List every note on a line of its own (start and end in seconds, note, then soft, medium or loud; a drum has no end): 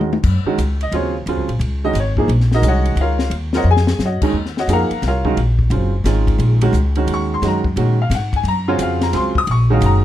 0.00 0.19 D#2 medium
0.00 0.11 D#3 medium
0.00 0.10 G#3 medium
0.00 0.11 C#4 medium
0.00 0.11 F#4 medium
0.00 0.13 D#5 medium
0.00 high tom medium
0.13 high tom medium
0.23 0.44 F#2 medium
0.23 kick medium
0.23 crash medium
0.45 0.57 D#3 medium
0.45 0.57 G#3 medium
0.45 0.57 C#4 medium
0.45 0.57 F#4 medium
0.45 muted upright bass stroke soft
0.58 0.91 C#2 medium
0.58 hi-hat pedal medium
0.58 ride medium
0.81 0.93 D#5 medium
0.81 ride soft
0.92 1.25 D#2 medium
0.92 1.13 C#3 medium
0.92 1.13 F#3 medium
0.92 1.13 C4 medium
0.92 1.13 F4 medium
0.92 1.15 C#5 medium
0.92 ride medium
1.26 1.37 D#2 medium
1.26 1.47 C#3 medium
1.26 1.47 F#3 medium
1.26 1.48 C4 medium
1.26 1.48 F4 medium
1.26 ride medium
1.37 1.47 C#2 medium
1.48 1.59 A#1 medium
1.48 ride soft
1.59 1.93 C#2 medium
1.59 ride medium
1.84 1.94 D#3 medium
1.84 1.94 G#3 medium
1.84 1.95 C#4 medium
1.84 1.95 F#4 medium
1.84 1.95 D#5 medium
1.93 2.27 G#1 medium
1.93 hi-hat pedal medium
1.93 ride medium
2.00 2.12 C#5 medium
2.17 2.28 F3 medium
2.17 2.28 A#3 medium
2.17 2.28 D#4 medium
2.17 2.28 G#4 medium
2.17 kick medium
2.28 2.61 A#1 medium
2.28 ride medium
2.40 snare soft
2.51 2.65 D#4 medium
2.51 2.62 F#4 medium
2.51 2.64 D#5 medium
2.51 snare soft
2.56 2.65 A#4 medium
2.62 2.95 C2 medium
2.62 3.15 D#3 soft
2.62 3.15 G#3 soft
2.62 3.15 C#4 soft
2.62 2.67 F#4 medium
2.62 hi-hat pedal medium
2.62 ride medium
2.68 2.98 F#4 medium
2.68 2.98 C#5 medium
2.68 2.98 D#5 medium
2.68 2.98 F#5 medium
2.85 ride soft
2.95 3.29 C#2 medium
2.95 ride medium
3.01 3.31 F4 medium
3.01 3.32 A#4 medium
3.01 3.31 C#5 medium
3.01 3.31 F5 medium
3.19 snare medium
3.30 3.63 D#2 medium
3.30 ride medium
3.53 3.65 F#3 medium
3.53 3.65 C4 medium
3.53 3.65 F4 medium
3.53 3.65 A#4 medium
3.53 3.67 D#5 medium
3.53 3.67 F#5 medium
3.53 snare medium
3.57 3.67 F#4 medium
3.57 3.67 C#5 medium
3.64 3.98 F2 medium
3.70 4.00 G#4 medium
3.70 4.00 G#5 loud
3.77 snare medium
3.87 snare medium
3.99 4.20 F#2 medium
3.99 snare medium
3.99 hi-hat pedal medium
4.05 4.35 F#4 medium
4.05 4.35 C#5 medium
4.05 4.35 D#5 medium
4.05 4.35 F#5 medium
4.22 4.33 D#3 medium
4.22 4.33 G#3 medium
4.22 4.33 C#4 medium
4.22 4.34 D#4 medium
4.22 kick medium
4.22 crash medium
4.33 4.67 D#2 medium
4.46 snare soft
4.57 4.70 F#4 medium
4.57 4.70 C#5 medium
4.57 4.70 D#5 medium
4.57 4.70 F#5 medium
4.57 snare soft
4.67 4.89 F2 medium
4.67 4.89 F3 medium
4.67 4.89 A#3 medium
4.67 4.89 D#4 medium
4.67 4.89 G#4 medium
4.67 hi-hat pedal medium
4.67 ride medium
4.73 5.03 A#4 medium
4.73 5.03 F5 medium
4.73 5.03 F#5 medium
4.73 5.03 A#5 loud
4.90 muted upright bass stroke soft
4.90 ride soft
5.02 5.36 C2 medium
5.02 snare soft
5.02 ride medium
5.07 5.37 F4 medium
5.07 5.37 A#4 medium
5.07 5.37 C#5 medium
5.07 5.37 F5 medium
5.25 5.36 D#3 medium
5.25 5.36 G#3 medium
5.25 5.36 C#4 medium
5.25 5.36 F#4 medium
5.25 kick medium
5.37 5.69 A#1 medium
5.37 ride medium
5.59 kick medium
5.70 6.03 F#1 loud
5.70 5.91 C#3 medium
5.70 5.91 F#3 medium
5.70 5.91 C4 medium
5.70 5.91 F4 medium
5.70 ride medium
6.04 6.38 G#1 medium
6.04 6.57 D#3 medium
6.04 6.57 G#3 medium
6.04 6.58 C#4 medium
6.04 6.58 F4 medium
6.04 snare soft
6.04 hi-hat pedal medium
6.04 ride medium
6.27 kick medium
6.27 ride medium
6.38 6.72 A#1 medium
6.38 ride medium
6.61 6.73 D#3 medium
6.61 6.73 G#3 medium
6.61 6.73 C#4 medium
6.61 6.73 F#4 medium
6.61 ride medium
6.73 7.06 C#2 loud
6.73 hi-hat pedal medium
6.95 7.40 D#3 medium
6.95 7.40 G#3 medium
6.95 7.40 C#4 medium
6.95 7.40 F#4 medium
6.95 ride soft
7.07 7.41 D#2 medium
7.07 ride medium
7.14 7.32 C#6 medium
7.34 7.44 C6 medium
7.42 7.75 F#2 medium
7.42 7.62 D#3 medium
7.42 7.62 G#3 medium
7.42 7.63 C#4 medium
7.42 7.63 F#4 medium
7.42 snare soft
7.42 ride medium
7.48 7.59 A#5 medium
7.64 kick medium
7.76 8.09 A#2 medium
7.76 7.97 D#3 medium
7.76 7.97 G#3 medium
7.76 7.97 C#4 medium
7.76 7.97 F#4 medium
7.76 ride medium
8.02 8.12 F5 medium
8.10 8.43 G#2 medium
8.10 snare soft
8.10 hi-hat pedal medium
8.10 ride medium
8.15 8.34 F#5 medium
8.33 8.46 G#5 medium
8.33 kick medium
8.33 ride soft
8.43 8.77 F#2 medium
8.43 ride medium
8.48 8.68 A#5 loud
8.68 9.11 C#3 medium
8.68 9.11 C4 medium
8.68 9.11 F4 medium
8.68 9.11 F#4 medium
8.68 8.80 C#5 medium
8.78 9.12 F2 medium
8.78 9.02 F5 medium
8.78 hi-hat pedal medium
8.78 ride medium
9.01 9.14 A#5 medium
9.01 snare medium
9.01 ride medium
9.13 9.46 C#2 medium
9.13 9.33 C#3 medium
9.13 9.33 F#3 medium
9.13 9.33 C4 medium
9.13 9.33 F4 medium
9.13 9.36 C6 medium
9.13 snare soft
9.13 ride medium
9.35 9.48 D#6 loud
9.35 kick medium
9.47 9.80 A#1 medium
9.47 ride medium
9.51 9.71 C#6 medium
9.70 10.04 D#3 medium
9.70 10.04 G#3 medium
9.70 10.04 C#4 medium
9.70 10.04 F#4 medium
9.70 9.83 F5 medium
9.81 10.04 F#1 loud
9.81 hi-hat pedal medium
9.81 ride medium
9.86 10.04 A#5 loud